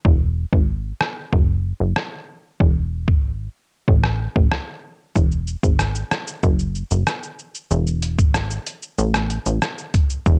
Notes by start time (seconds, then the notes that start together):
0.05 E1, kick
0.53 G#1, kick
1.01 cross-stick
1.33 F#1, kick
1.80 F#1
1.96 cross-stick
2.60 E1, kick
3.08 G#1, kick
3.88 A1, kick
4.04 cross-stick
4.36 A1, kick
4.52 cross-stick
5.16 E1, kick, shaker
5.32 shaker
5.47 shaker
5.63 G#1, kick, shaker
5.79 cross-stick, shaker
5.95 shaker
6.11 cross-stick, shaker
6.27 shaker
6.43 F#1, kick, shaker
6.59 shaker
6.75 shaker
6.91 F#1, shaker
7.07 cross-stick, shaker
7.23 shaker
7.39 shaker
7.55 shaker
7.71 E1, shaker
7.87 shaker
8.02 closed hi-hat, shaker
8.19 G#1, kick, shaker
8.34 cross-stick, shaker
8.50 shaker
8.66 closed hi-hat, shaker
8.82 shaker
8.98 A1, shaker
9.14 cross-stick, shaker
9.30 closed hi-hat, shaker
9.46 A1, shaker
9.62 cross-stick, shaker
9.78 shaker
9.94 kick, closed hi-hat, shaker
10.10 shaker
10.26 E1, kick, shaker